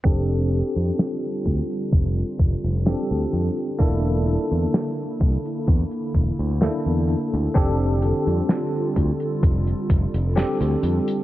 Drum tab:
HH |x-xxx-xxxxxxxxxx|x-xxx-xxxxxxxxxx|x-xxx-xxxxxxxxxx|
SD |----o-------o---|----o-------o---|----o-------o---|
BD |o-----o-o-o-----|o-----o-o-o-----|o-----o-o-o-----|